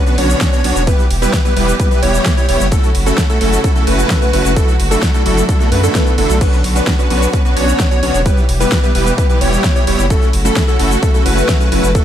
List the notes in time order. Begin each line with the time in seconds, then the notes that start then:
Already playing: D3 F#3 B3 F#4 C#5
0.06 B3 C#4 D4 F#4 B4, closed hi-hat, shaker
0.18 B1 B3 C#4 D4 F#4 C#5, open hi-hat, ride
0.30 closed hi-hat, shaker
0.41 kick, snare, closed hi-hat, ride, shaker
0.53 B3 C#4 D4 F#4 C#5, closed hi-hat, shaker
0.64 B1 B3 C#4 D4 F#4 C#5, open hi-hat, ride
0.76 E1, closed hi-hat, shaker
0.87 B2 E3 G3 B3 E4 G4 B4, kick, closed hi-hat, ride, shaker
0.99 closed hi-hat, shaker
1.10 E1, open hi-hat, ride
1.22 G3 B3 E4 G4 B4, open hi-hat, shaker
1.33 kick, snare, closed hi-hat, ride, shaker
1.45 G3 B3 E4 G4 B4, closed hi-hat, shaker
1.56 E1 G3 B3 E4 G4 B4, open hi-hat, ride
1.68 closed hi-hat, shaker
1.80 G3 B3 E4 G4 B4, kick, closed hi-hat, ride, shaker
1.91 G3 B3 E4 G4 B4, closed hi-hat, shaker
2.03 E1 G3 B3 E4 G4 C#5, open hi-hat, ride
2.14 closed hi-hat, shaker
2.26 kick, snare, closed hi-hat, ride, shaker
2.37 G3 B3 E4 G4 C#5, closed hi-hat, shaker
2.49 E1 G3 B3 E4 G4 C#5, open hi-hat, ride
2.60 F#1, closed hi-hat, shaker
2.72 C#3 F#3 A3 C#4 E4 F#4 A4, kick, closed hi-hat, ride, shaker
2.83 closed hi-hat, shaker
2.95 F#1, open hi-hat, ride
3.06 A3 C#4 E4 F#4 A4, closed hi-hat, shaker
3.18 kick, snare, closed hi-hat, ride, shaker
3.29 A3 C#4 E4 F#4 A4, closed hi-hat, shaker
3.41 F#1 A3 C#4 E4 F#4 A4, open hi-hat, ride
3.52 closed hi-hat, shaker
3.64 A3 C#4 E4 F#4 A4, kick, closed hi-hat, ride, shaker
3.76 A3 C#4 E4 F#4 A4, closed hi-hat, shaker
3.87 F#1 A3 C#4 E4 F#4 B4, open hi-hat, ride
3.99 closed hi-hat, shaker
4.10 kick, snare, closed hi-hat, ride, shaker
4.22 A3 C#4 E4 F#4 B4, closed hi-hat, shaker
4.33 F#1 A3 C#4 E4 F#4 B4, open hi-hat, ride
4.45 F#1, closed hi-hat, shaker
4.56 D3 A3 D4 E4 F#4 A4, kick, closed hi-hat, ride, shaker
4.68 closed hi-hat, shaker
4.80 F#1, open hi-hat, ride
4.91 A3 D4 E4 F#4 A4, open hi-hat, shaker
5.03 kick, snare, closed hi-hat, ride, shaker
5.14 A3 D4 E4 F#4 A4, closed hi-hat, shaker
5.26 F#1 A3 D4 E4 F#4 A4, open hi-hat, ride
5.37 closed hi-hat, shaker
5.49 A3 D4 E4 F#4 A4, kick, closed hi-hat, ride, swell, shaker
5.60 A3 D4 E4 F#4 A4, snare, closed hi-hat, shaker
5.72 F#2 A3 D4 E4 F#4 B4, open hi-hat, ride
5.83 A3 D4 E4 F#4 A4, closed hi-hat, shaker
5.95 A3 D4 E4 F#4 A4, kick, snare, closed hi-hat, ride, shaker
6.07 closed hi-hat, shaker
6.18 F#1 A3 D4 E4 F#4 A4, open hi-hat, ride
6.30 B1, closed hi-hat, shaker
6.41 B3 C#4 D4 F#4 B4 C#5, kick, closed hi-hat, crash, ride, shaker
6.53 closed hi-hat, shaker
6.64 B1, open hi-hat, ride
6.76 B3 C#4 D4 F#4 B4, closed hi-hat, shaker
6.87 kick, snare, closed hi-hat, ride, shaker
6.99 B3 C#4 D4 F#4 B4, closed hi-hat, shaker
7.10 B1 B3 C#4 D4 F#4 B4, open hi-hat, ride
7.22 closed hi-hat, shaker
7.33 B3 C#4 D4 F#4 B4, kick, closed hi-hat, ride, shaker
7.45 B3 C#4 D4 F#4 B4, closed hi-hat, shaker
7.56 B1 B3 C#4 D4 F#4 C#5, open hi-hat, ride
7.68 closed hi-hat, shaker
7.80 kick, snare, closed hi-hat, ride, shaker
7.91 B3 C#4 D4 F#4 C#5, closed hi-hat, shaker
8.03 B1 B3 C#4 D4 F#4 C#5, open hi-hat, ride
8.14 E1, closed hi-hat, shaker
8.25 B2 E3 G3 B3 E4 G4 B4, kick, closed hi-hat, ride, shaker
8.37 closed hi-hat, shaker
8.49 E1, open hi-hat, ride
8.60 G3 B3 E4 G4 B4, open hi-hat, shaker
8.72 kick, snare, ride, shaker
8.83 G3 B3 E4 G4 B4, closed hi-hat, shaker
8.95 E1 G3 B3 E4 G4 B4, open hi-hat, ride
9.07 closed hi-hat, shaker
9.18 G3 B3 E4 G4 B4, kick, closed hi-hat, ride, shaker
9.29 G3 B3 E4 G4 B4, closed hi-hat, shaker
9.41 E1 G3 B3 E4 G4 C#5, open hi-hat, ride
9.53 closed hi-hat, shaker
9.64 kick, snare, closed hi-hat, ride, shaker
9.76 G3 B3 E4 G4 C#5, closed hi-hat, shaker
9.87 E1 G3 B3 E4 G4 C#5, open hi-hat, ride
9.99 F#1, closed hi-hat, shaker
10.10 C#3 F#3 A3 C#4 E4 F#4 A4, kick, closed hi-hat, ride, shaker
10.22 closed hi-hat, shaker
10.33 F#1, open hi-hat, ride
10.45 A3 C#4 E4 F#4 A4, closed hi-hat, shaker
10.56 kick, snare, closed hi-hat, ride, shaker
10.68 A3 C#4 E4 F#4 A4, closed hi-hat, shaker
10.79 F#1 A3 C#4 E4 F#4 A4, open hi-hat, ride
10.91 closed hi-hat, shaker
11.02 A3 C#4 E4 F#4 A4, kick, closed hi-hat, ride, shaker
11.14 A3 C#4 E4 F#4 A4, closed hi-hat, shaker
11.26 F#1 A3 C#4 E4 F#4 B4, open hi-hat, ride
11.37 closed hi-hat, shaker
11.49 kick, snare, closed hi-hat, ride, shaker
11.60 A3 C#4 E4 F#4 B4, closed hi-hat, shaker
11.72 F#1 A3 C#4 E4 F#4 B4, open hi-hat, ride
11.83 F#1, closed hi-hat, shaker
11.95 D3 A3 D4 E4 F#4 A4, kick, closed hi-hat, ride, shaker